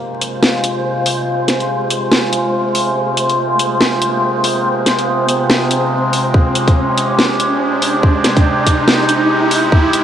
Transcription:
0, 0, Header, 1, 5, 480
1, 0, Start_track
1, 0, Key_signature, -4, "minor"
1, 0, Tempo, 422535
1, 1445, Time_signature, 4, 2, 24, 8
1, 11401, End_track
2, 0, Start_track
2, 0, Title_t, "Synth texture"
2, 0, Program_c, 0, 99
2, 0, Note_on_c, 0, 72, 82
2, 11401, Note_off_c, 0, 72, 0
2, 11401, End_track
3, 0, Start_track
3, 0, Title_t, "Synth drone"
3, 0, Program_c, 1, 95
3, 0, Note_on_c, 1, 48, 75
3, 0, Note_on_c, 1, 56, 69
3, 0, Note_on_c, 1, 65, 83
3, 7159, Note_off_c, 1, 65, 0
3, 7207, Note_on_c, 1, 67, 86
3, 11401, Note_off_c, 1, 48, 0
3, 11401, Note_off_c, 1, 56, 0
3, 11401, Note_off_c, 1, 67, 0
3, 11401, End_track
4, 0, Start_track
4, 0, Title_t, "Riser"
4, 0, Program_c, 2, 103
4, 0, Note_on_c, 2, 60, 75
4, 11401, Note_off_c, 2, 60, 0
4, 11401, End_track
5, 0, Start_track
5, 0, Title_t, "Drums"
5, 243, Note_on_c, 9, 42, 78
5, 357, Note_off_c, 9, 42, 0
5, 484, Note_on_c, 9, 38, 114
5, 597, Note_off_c, 9, 38, 0
5, 724, Note_on_c, 9, 42, 79
5, 837, Note_off_c, 9, 42, 0
5, 1203, Note_on_c, 9, 46, 93
5, 1317, Note_off_c, 9, 46, 0
5, 1683, Note_on_c, 9, 38, 63
5, 1683, Note_on_c, 9, 42, 83
5, 1796, Note_off_c, 9, 38, 0
5, 1796, Note_off_c, 9, 42, 0
5, 1822, Note_on_c, 9, 42, 35
5, 1936, Note_off_c, 9, 42, 0
5, 2163, Note_on_c, 9, 42, 82
5, 2277, Note_off_c, 9, 42, 0
5, 2403, Note_on_c, 9, 38, 122
5, 2516, Note_off_c, 9, 38, 0
5, 2643, Note_on_c, 9, 42, 80
5, 2757, Note_off_c, 9, 42, 0
5, 3123, Note_on_c, 9, 46, 87
5, 3236, Note_off_c, 9, 46, 0
5, 3603, Note_on_c, 9, 42, 80
5, 3717, Note_off_c, 9, 42, 0
5, 3743, Note_on_c, 9, 42, 36
5, 3857, Note_off_c, 9, 42, 0
5, 4083, Note_on_c, 9, 42, 81
5, 4196, Note_off_c, 9, 42, 0
5, 4323, Note_on_c, 9, 38, 120
5, 4437, Note_off_c, 9, 38, 0
5, 4563, Note_on_c, 9, 42, 82
5, 4676, Note_off_c, 9, 42, 0
5, 5043, Note_on_c, 9, 46, 85
5, 5157, Note_off_c, 9, 46, 0
5, 5524, Note_on_c, 9, 38, 63
5, 5524, Note_on_c, 9, 42, 77
5, 5638, Note_off_c, 9, 38, 0
5, 5638, Note_off_c, 9, 42, 0
5, 5664, Note_on_c, 9, 42, 36
5, 5778, Note_off_c, 9, 42, 0
5, 6004, Note_on_c, 9, 42, 77
5, 6118, Note_off_c, 9, 42, 0
5, 6244, Note_on_c, 9, 38, 120
5, 6357, Note_off_c, 9, 38, 0
5, 6484, Note_on_c, 9, 42, 76
5, 6597, Note_off_c, 9, 42, 0
5, 6964, Note_on_c, 9, 46, 83
5, 7078, Note_off_c, 9, 46, 0
5, 7205, Note_on_c, 9, 36, 114
5, 7318, Note_off_c, 9, 36, 0
5, 7444, Note_on_c, 9, 42, 76
5, 7558, Note_off_c, 9, 42, 0
5, 7584, Note_on_c, 9, 36, 101
5, 7584, Note_on_c, 9, 42, 35
5, 7698, Note_off_c, 9, 36, 0
5, 7698, Note_off_c, 9, 42, 0
5, 7924, Note_on_c, 9, 42, 80
5, 8038, Note_off_c, 9, 42, 0
5, 8164, Note_on_c, 9, 38, 117
5, 8277, Note_off_c, 9, 38, 0
5, 8404, Note_on_c, 9, 42, 77
5, 8518, Note_off_c, 9, 42, 0
5, 8884, Note_on_c, 9, 46, 88
5, 8997, Note_off_c, 9, 46, 0
5, 9125, Note_on_c, 9, 36, 108
5, 9239, Note_off_c, 9, 36, 0
5, 9365, Note_on_c, 9, 38, 62
5, 9365, Note_on_c, 9, 42, 76
5, 9478, Note_off_c, 9, 38, 0
5, 9478, Note_off_c, 9, 42, 0
5, 9504, Note_on_c, 9, 36, 100
5, 9504, Note_on_c, 9, 42, 34
5, 9617, Note_off_c, 9, 42, 0
5, 9618, Note_off_c, 9, 36, 0
5, 9844, Note_on_c, 9, 42, 77
5, 9845, Note_on_c, 9, 36, 61
5, 9958, Note_off_c, 9, 36, 0
5, 9958, Note_off_c, 9, 42, 0
5, 10084, Note_on_c, 9, 38, 117
5, 10197, Note_off_c, 9, 38, 0
5, 10324, Note_on_c, 9, 42, 75
5, 10437, Note_off_c, 9, 42, 0
5, 10805, Note_on_c, 9, 46, 92
5, 10918, Note_off_c, 9, 46, 0
5, 11045, Note_on_c, 9, 36, 110
5, 11158, Note_off_c, 9, 36, 0
5, 11284, Note_on_c, 9, 42, 80
5, 11398, Note_off_c, 9, 42, 0
5, 11401, End_track
0, 0, End_of_file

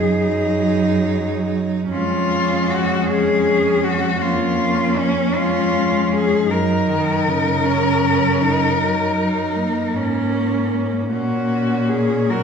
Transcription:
0, 0, Header, 1, 5, 480
1, 0, Start_track
1, 0, Key_signature, 6, "major"
1, 0, Tempo, 766284
1, 1206, Time_signature, 12, 3, 24, 8
1, 5519, Tempo, 779221
1, 7749, End_track
2, 0, Start_track
2, 0, Title_t, "Cello"
2, 0, Program_c, 0, 42
2, 0, Note_on_c, 0, 68, 94
2, 940, Note_off_c, 0, 68, 0
2, 1211, Note_on_c, 0, 65, 95
2, 1691, Note_on_c, 0, 66, 96
2, 1700, Note_off_c, 0, 65, 0
2, 1931, Note_off_c, 0, 66, 0
2, 1937, Note_on_c, 0, 68, 96
2, 2405, Note_on_c, 0, 66, 96
2, 2414, Note_off_c, 0, 68, 0
2, 2639, Note_on_c, 0, 65, 91
2, 2648, Note_off_c, 0, 66, 0
2, 3120, Note_on_c, 0, 61, 87
2, 3129, Note_off_c, 0, 65, 0
2, 3356, Note_on_c, 0, 65, 94
2, 3365, Note_off_c, 0, 61, 0
2, 3835, Note_on_c, 0, 68, 93
2, 3845, Note_off_c, 0, 65, 0
2, 4074, Note_on_c, 0, 70, 95
2, 4084, Note_off_c, 0, 68, 0
2, 6705, Note_off_c, 0, 70, 0
2, 6932, Note_on_c, 0, 66, 76
2, 7417, Note_on_c, 0, 68, 83
2, 7426, Note_off_c, 0, 66, 0
2, 7667, Note_on_c, 0, 70, 87
2, 7676, Note_off_c, 0, 68, 0
2, 7749, Note_off_c, 0, 70, 0
2, 7749, End_track
3, 0, Start_track
3, 0, Title_t, "Cello"
3, 0, Program_c, 1, 42
3, 0, Note_on_c, 1, 63, 66
3, 1192, Note_off_c, 1, 63, 0
3, 1196, Note_on_c, 1, 61, 61
3, 2614, Note_off_c, 1, 61, 0
3, 2640, Note_on_c, 1, 61, 67
3, 4048, Note_off_c, 1, 61, 0
3, 4062, Note_on_c, 1, 63, 62
3, 4794, Note_on_c, 1, 61, 64
3, 4803, Note_off_c, 1, 63, 0
3, 5034, Note_off_c, 1, 61, 0
3, 5037, Note_on_c, 1, 61, 61
3, 5270, Note_on_c, 1, 63, 64
3, 5279, Note_off_c, 1, 61, 0
3, 5511, Note_off_c, 1, 63, 0
3, 5515, Note_on_c, 1, 63, 58
3, 6228, Note_on_c, 1, 61, 55
3, 6237, Note_off_c, 1, 63, 0
3, 6937, Note_off_c, 1, 61, 0
3, 6940, Note_on_c, 1, 61, 54
3, 7669, Note_on_c, 1, 66, 56
3, 7678, Note_off_c, 1, 61, 0
3, 7749, Note_off_c, 1, 66, 0
3, 7749, End_track
4, 0, Start_track
4, 0, Title_t, "Cello"
4, 0, Program_c, 2, 42
4, 0, Note_on_c, 2, 54, 69
4, 1205, Note_on_c, 2, 56, 68
4, 1214, Note_off_c, 2, 54, 0
4, 2638, Note_on_c, 2, 58, 64
4, 2647, Note_off_c, 2, 56, 0
4, 3360, Note_on_c, 2, 56, 63
4, 3370, Note_off_c, 2, 58, 0
4, 4067, Note_on_c, 2, 54, 66
4, 4076, Note_off_c, 2, 56, 0
4, 4311, Note_on_c, 2, 51, 68
4, 4320, Note_off_c, 2, 54, 0
4, 4552, Note_on_c, 2, 49, 67
4, 4562, Note_off_c, 2, 51, 0
4, 5512, Note_off_c, 2, 49, 0
4, 5515, Note_on_c, 2, 54, 68
4, 5749, Note_off_c, 2, 54, 0
4, 5757, Note_on_c, 2, 54, 65
4, 5986, Note_on_c, 2, 58, 63
4, 5995, Note_off_c, 2, 54, 0
4, 6928, Note_off_c, 2, 58, 0
4, 6932, Note_on_c, 2, 58, 59
4, 7664, Note_on_c, 2, 54, 56
4, 7673, Note_off_c, 2, 58, 0
4, 7749, Note_off_c, 2, 54, 0
4, 7749, End_track
5, 0, Start_track
5, 0, Title_t, "Cello"
5, 0, Program_c, 3, 42
5, 0, Note_on_c, 3, 42, 75
5, 1202, Note_off_c, 3, 42, 0
5, 1205, Note_on_c, 3, 41, 69
5, 4050, Note_off_c, 3, 41, 0
5, 4074, Note_on_c, 3, 42, 65
5, 6206, Note_off_c, 3, 42, 0
5, 6231, Note_on_c, 3, 44, 58
5, 6940, Note_on_c, 3, 46, 62
5, 6949, Note_off_c, 3, 44, 0
5, 7749, Note_off_c, 3, 46, 0
5, 7749, End_track
0, 0, End_of_file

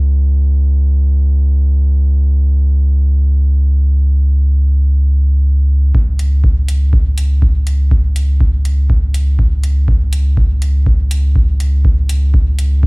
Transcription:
0, 0, Header, 1, 3, 480
1, 0, Start_track
1, 0, Tempo, 491803
1, 44, Time_signature, 4, 2, 24, 8
1, 12559, End_track
2, 0, Start_track
2, 0, Title_t, "Sub bass"
2, 0, Program_c, 0, 38
2, 0, Note_on_c, 0, 37, 88
2, 5781, Note_off_c, 0, 37, 0
2, 5803, Note_on_c, 0, 37, 92
2, 12559, Note_off_c, 0, 37, 0
2, 12559, End_track
3, 0, Start_track
3, 0, Title_t, "Drums"
3, 5804, Note_on_c, 9, 36, 113
3, 5901, Note_off_c, 9, 36, 0
3, 6044, Note_on_c, 9, 42, 85
3, 6142, Note_off_c, 9, 42, 0
3, 6284, Note_on_c, 9, 36, 105
3, 6381, Note_off_c, 9, 36, 0
3, 6524, Note_on_c, 9, 42, 82
3, 6622, Note_off_c, 9, 42, 0
3, 6763, Note_on_c, 9, 36, 116
3, 6861, Note_off_c, 9, 36, 0
3, 7004, Note_on_c, 9, 42, 80
3, 7102, Note_off_c, 9, 42, 0
3, 7244, Note_on_c, 9, 36, 104
3, 7341, Note_off_c, 9, 36, 0
3, 7484, Note_on_c, 9, 42, 85
3, 7581, Note_off_c, 9, 42, 0
3, 7724, Note_on_c, 9, 36, 119
3, 7821, Note_off_c, 9, 36, 0
3, 7964, Note_on_c, 9, 42, 86
3, 8061, Note_off_c, 9, 42, 0
3, 8204, Note_on_c, 9, 36, 107
3, 8301, Note_off_c, 9, 36, 0
3, 8444, Note_on_c, 9, 42, 86
3, 8542, Note_off_c, 9, 42, 0
3, 8684, Note_on_c, 9, 36, 121
3, 8781, Note_off_c, 9, 36, 0
3, 8924, Note_on_c, 9, 42, 84
3, 9022, Note_off_c, 9, 42, 0
3, 9164, Note_on_c, 9, 36, 110
3, 9262, Note_off_c, 9, 36, 0
3, 9404, Note_on_c, 9, 42, 85
3, 9502, Note_off_c, 9, 42, 0
3, 9644, Note_on_c, 9, 36, 124
3, 9742, Note_off_c, 9, 36, 0
3, 9884, Note_on_c, 9, 42, 88
3, 9981, Note_off_c, 9, 42, 0
3, 10124, Note_on_c, 9, 36, 110
3, 10221, Note_off_c, 9, 36, 0
3, 10364, Note_on_c, 9, 42, 84
3, 10462, Note_off_c, 9, 42, 0
3, 10604, Note_on_c, 9, 36, 122
3, 10701, Note_off_c, 9, 36, 0
3, 10844, Note_on_c, 9, 42, 88
3, 10941, Note_off_c, 9, 42, 0
3, 11084, Note_on_c, 9, 36, 107
3, 11181, Note_off_c, 9, 36, 0
3, 11324, Note_on_c, 9, 42, 88
3, 11421, Note_off_c, 9, 42, 0
3, 11563, Note_on_c, 9, 36, 120
3, 11661, Note_off_c, 9, 36, 0
3, 11804, Note_on_c, 9, 42, 86
3, 11901, Note_off_c, 9, 42, 0
3, 12043, Note_on_c, 9, 36, 113
3, 12141, Note_off_c, 9, 36, 0
3, 12284, Note_on_c, 9, 42, 84
3, 12382, Note_off_c, 9, 42, 0
3, 12524, Note_on_c, 9, 36, 121
3, 12559, Note_off_c, 9, 36, 0
3, 12559, End_track
0, 0, End_of_file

